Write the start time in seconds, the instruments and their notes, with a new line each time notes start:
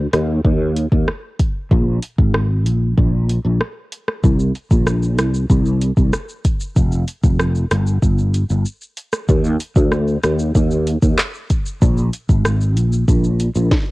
0.13 fretless electric bass D#2, cross-stick, closed hi-hat
0.45 fretless electric bass D#2, kick
0.76 closed hi-hat
0.92 fretless electric bass D#2, kick
1.08 cross-stick
1.39 kick, closed hi-hat
1.71 fretless electric bass A#1, kick
2.02 closed hi-hat
2.18 fretless electric bass G#1, kick
2.34 cross-stick
2.66 fretless electric bass A#1, closed hi-hat
2.97 fretless electric bass A#1, kick
3.29 closed hi-hat
3.45 fretless electric bass A#1
3.61 cross-stick
3.92 closed hi-hat
4.08 cross-stick
4.24 fretless electric bass C2, kick, shaker
4.39 shaker
4.55 closed hi-hat, shaker
4.71 fretless electric bass A#1, kick, shaker
4.87 cross-stick, shaker
5.03 shaker
5.18 fretless electric bass C2, cross-stick, closed hi-hat, shaker
5.34 shaker
5.50 fretless electric bass C2, kick, shaker
5.66 shaker
5.82 closed hi-hat, shaker
5.97 fretless electric bass C2, kick, shaker
6.13 cross-stick, shaker
6.29 shaker
6.45 kick, closed hi-hat, shaker
6.60 shaker
6.76 fretless electric bass F1, kick, shaker
6.92 shaker
7.08 closed hi-hat, shaker
7.23 fretless electric bass F1, kick, shaker
7.40 cross-stick, shaker
7.55 shaker
7.71 fretless electric bass G1, cross-stick, closed hi-hat, shaker
7.87 shaker
8.03 fretless electric bass G1, kick, shaker
8.19 shaker
8.34 closed hi-hat, shaker
8.50 fretless electric bass G1, shaker
8.66 shaker
8.81 shaker
8.97 closed hi-hat, shaker
9.13 cross-stick, shaker
9.29 fretless electric bass D#2, kick, shaker
9.44 shaker
9.60 closed hi-hat, shaker
9.76 fretless electric bass D2, kick, shaker
9.92 cross-stick, shaker
10.08 shaker
10.24 fretless electric bass D#2, cross-stick, closed hi-hat, shaker
10.39 shaker
10.55 fretless electric bass D#2, kick, shaker
10.71 shaker
10.87 closed hi-hat, shaker
11.02 fretless electric bass D#2, kick, shaker
11.18 cross-stick, clap, shaker
11.34 shaker
11.50 kick, closed hi-hat, shaker
11.66 shaker
11.82 fretless electric bass A#1, kick, shaker
11.97 shaker
12.13 closed hi-hat, shaker
12.29 fretless electric bass G#1, kick, shaker
12.45 cross-stick, shaker
12.61 shaker
12.77 fretless electric bass A#1, closed hi-hat, shaker
12.92 shaker
13.08 fretless electric bass A#1, kick, shaker
13.24 shaker
13.40 closed hi-hat, shaker
13.55 fretless electric bass A#1, shaker
13.71 kick, snare